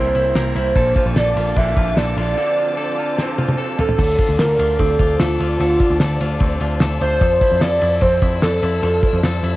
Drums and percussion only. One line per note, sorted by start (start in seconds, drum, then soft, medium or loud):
0.15 ride medium
0.35 snare loud
0.35 ride medium
0.56 ride medium
0.76 kick loud
0.76 ride medium
0.96 kick loud
0.96 ride medium
1.16 snare loud
1.16 ride medium
1.37 ride medium
1.56 kick medium
1.56 ride medium
1.77 kick loud
1.77 ride medium
1.97 snare loud
1.97 ride medium
2.17 ride medium
3.18 snare medium
3.38 high tom medium
3.49 high tom medium
3.79 floor tom loud
3.89 floor tom loud
3.99 kick loud
3.99 crash loud
4.19 kick loud
4.19 ride medium
4.39 snare loud
4.39 ride medium
4.59 ride medium
4.79 kick medium
4.79 ride medium
4.99 kick loud
4.99 ride medium
5.20 snare loud
5.20 ride medium
5.40 ride medium
5.60 ride medium
5.80 kick loud
5.80 ride medium
6.00 snare loud
6.00 ride medium
6.20 ride medium
6.40 kick loud
6.40 ride medium
6.60 ride medium
6.80 snare loud
6.80 ride medium
7.01 ride medium
7.21 kick loud
7.21 ride medium
7.41 kick loud
7.41 ride medium
7.61 snare loud
7.61 ride medium
7.81 ride medium
8.01 kick medium
8.01 ride medium
8.22 kick loud
8.22 ride medium
8.42 snare loud
8.42 ride medium
8.63 ride medium
8.83 ride medium
9.03 kick loud
9.03 ride medium
9.23 snare loud
9.23 ride medium
9.44 ride medium